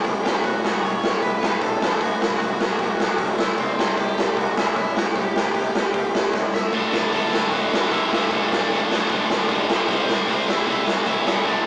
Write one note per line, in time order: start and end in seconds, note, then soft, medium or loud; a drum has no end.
0.05 0.20 G1 medium
0.05 kick loud
0.05 open hi-hat medium
0.24 0.44 E1 medium
0.24 0.37 G4 medium
0.24 0.37 G5 medium
0.24 snare loud
0.38 0.44 E5 medium
0.44 0.59 D1 medium
0.44 0.81 F#4 medium
0.44 0.84 F#5 loud
0.44 kick loud
0.44 open hi-hat medium
0.65 0.80 D1 medium
0.65 snare loud
0.74 kick medium
0.83 0.99 D1 medium
0.83 1.21 C#5 medium
0.83 1.22 C#6 medium
0.83 kick medium
0.83 open hi-hat medium
1.04 1.19 D1 medium
1.04 snare loud
1.22 1.38 D1 medium
1.22 1.59 B4 medium
1.22 1.59 B5 loud
1.22 kick loud
1.22 open hi-hat medium
1.42 1.58 D1 medium
1.42 snare loud
1.61 1.77 B1 medium
1.61 1.99 A4 medium
1.61 2.03 A5 medium
1.61 kick loud
1.61 open hi-hat medium
1.81 1.97 A1 medium
1.81 snare loud
2.01 2.16 D1 medium
2.01 2.20 F#4 medium
2.01 2.21 F#5 medium
2.01 kick loud
2.01 open hi-hat medium
2.21 2.36 D1 medium
2.21 3.35 F#4 medium
2.21 3.38 F#5 medium
2.21 snare loud
2.30 kick medium
2.40 2.55 D1 medium
2.40 kick loud
2.40 open hi-hat medium
2.60 2.76 D1 medium
2.60 snare loud
2.79 2.94 D1 medium
2.79 kick loud
2.79 open hi-hat medium
3.00 3.15 D1 medium
3.00 snare loud
3.18 3.34 D1 loud
3.18 kick loud
3.18 open hi-hat medium
3.38 3.54 C#2 medium
3.38 3.57 E4 medium
3.38 3.59 E5 medium
3.38 snare loud
3.58 3.74 C2 medium
3.58 3.95 C4 medium
3.58 3.99 C5 medium
3.58 kick loud
3.58 open hi-hat medium
3.78 3.93 C2 loud
3.78 snare loud
3.88 kick medium
3.97 4.13 C2 medium
3.97 4.35 G4 medium
3.97 4.39 G5 medium
3.97 kick loud
3.97 open hi-hat medium
4.17 4.32 C2 medium
4.17 snare loud
4.37 4.52 C2 medium
4.37 4.56 F#4 medium
4.37 4.58 F#5 medium
4.37 kick loud
4.37 open hi-hat medium
4.57 4.72 C2 medium
4.57 4.76 E4 medium
4.57 4.76 E5 medium
4.57 snare loud
4.76 4.92 F#1 medium
4.76 4.96 E4 medium
4.76 4.97 E5 medium
4.76 kick loud
4.76 open hi-hat medium
4.96 5.12 G1 medium
4.96 5.02 F#4 medium
4.96 5.02 F#5 medium
4.96 snare loud
5.16 5.31 G1 medium
5.16 6.31 G4 medium
5.16 6.34 G5 medium
5.16 kick loud
5.16 open hi-hat medium
5.35 5.51 G1 medium
5.35 snare loud
5.45 kick medium
5.55 5.71 G1 medium
5.55 kick loud
5.55 open hi-hat medium
5.75 5.91 G1 medium
5.75 snare medium
5.94 6.10 G1 medium
5.94 kick loud
5.94 open hi-hat medium
6.13 6.29 G1 medium
6.13 snare loud
6.33 6.49 G1 medium
6.33 kick loud
6.33 snare medium
6.53 6.69 G1 medium
6.53 6.73 E4 medium
6.53 6.74 E5 medium
6.53 snare medium
6.73 6.88 D1 medium
6.73 7.13 D2 medium
6.73 7.12 A2 medium
6.73 7.13 D3 medium
6.73 7.11 D4 medium
6.73 7.14 D5 medium
6.73 kick loud
6.73 open hi-hat medium
6.92 7.08 D1 medium
6.92 snare loud
7.03 kick medium
7.13 7.28 D1 medium
7.13 7.32 D2 medium
7.13 7.32 A2 medium
7.13 7.33 D3 medium
7.13 7.50 A4 medium
7.13 7.54 A5 medium
7.13 kick medium
7.13 open hi-hat medium
7.32 7.47 D1 medium
7.32 7.51 D2 medium
7.32 7.51 A2 medium
7.32 7.51 D3 loud
7.32 snare loud
7.52 7.67 D1 medium
7.52 7.90 D2 medium
7.52 7.90 A2 loud
7.52 7.91 D3 medium
7.52 7.89 F#4 medium
7.52 7.92 F#5 medium
7.52 kick loud
7.52 open hi-hat medium
7.71 7.87 D1 medium
7.71 snare loud
7.91 8.07 B1 medium
7.91 8.10 D2 medium
7.91 8.11 A2 medium
7.91 8.11 D3 medium
7.91 8.29 E4 medium
7.91 8.29 E5 medium
7.91 kick loud
7.91 open hi-hat medium
8.10 8.26 A1 medium
8.10 8.30 D2 medium
8.10 8.30 A2 medium
8.10 8.30 D3 medium
8.10 snare loud
8.31 8.46 D1 medium
8.31 8.69 D2 medium
8.31 8.70 A2 loud
8.31 8.70 D3 loud
8.31 8.50 D4 medium
8.31 8.52 D5 medium
8.31 kick loud
8.31 open hi-hat medium
8.50 8.66 D1 medium
8.50 9.66 D4 medium
8.50 9.66 D5 medium
8.50 snare loud
8.61 kick medium
8.70 8.86 D1 medium
8.70 8.89 D2 medium
8.70 8.90 A2 medium
8.70 8.90 D3 medium
8.70 kick medium
8.70 open hi-hat medium
8.90 9.05 D1 medium
8.90 9.09 D2 medium
8.90 9.09 A2 medium
8.90 9.09 D3 medium
8.90 snare loud
9.10 9.25 D1 medium
9.10 9.49 D2 medium
9.10 9.49 A2 loud
9.10 9.49 D3 loud
9.10 kick loud
9.10 open hi-hat medium
9.30 9.45 D1 medium
9.30 snare loud
9.49 9.65 D1 medium
9.49 9.68 D2 medium
9.49 9.68 A2 medium
9.49 9.69 D3 medium
9.49 kick loud
9.49 open hi-hat medium
9.69 9.85 C#2 medium
9.69 9.88 D2 medium
9.69 9.88 A2 medium
9.69 9.88 D3 medium
9.69 snare loud
9.88 10.04 C2 medium
9.88 10.27 C3 medium
9.88 10.28 G3 medium
9.88 10.07 C4 medium
9.88 10.28 C4 loud
9.88 10.10 C5 medium
9.88 kick loud
9.88 open hi-hat medium
10.08 10.24 C2 medium
10.08 10.27 D4 medium
10.08 10.29 D5 medium
10.08 snare loud
10.18 kick medium
10.28 10.43 C2 medium
10.28 10.46 C3 medium
10.28 10.48 G3 medium
10.28 10.47 C4 medium
10.28 10.49 C5 medium
10.28 kick medium
10.28 open hi-hat medium
10.48 10.63 C2 medium
10.48 10.65 C3 medium
10.48 10.66 G3 medium
10.48 10.66 C4 loud
10.48 10.85 E4 medium
10.48 10.88 E5 medium
10.48 snare loud
10.67 10.82 C2 medium
10.67 11.05 C3 medium
10.67 11.06 G3 medium
10.67 11.06 C4 loud
10.67 kick loud
10.67 open hi-hat medium
10.87 11.02 C2 medium
10.87 11.05 F#4 medium
10.87 11.08 F#5 medium
10.87 snare loud
11.06 11.22 A1 medium
11.06 11.25 C3 medium
11.06 11.25 G3 medium
11.06 11.25 C4 medium
11.06 11.43 E4 medium
11.06 11.48 E5 medium
11.06 kick loud
11.06 open hi-hat medium
11.25 11.41 G1 medium
11.25 11.45 G2 loud
11.25 11.45 D3 medium
11.25 11.46 G3 loud
11.25 snare loud
11.46 11.61 G1 medium
11.46 11.67 G2 loud
11.46 11.67 D3 loud
11.46 11.67 G3 loud
11.46 11.67 D4 medium
11.46 11.67 D5 medium
11.46 kick loud
11.46 open hi-hat medium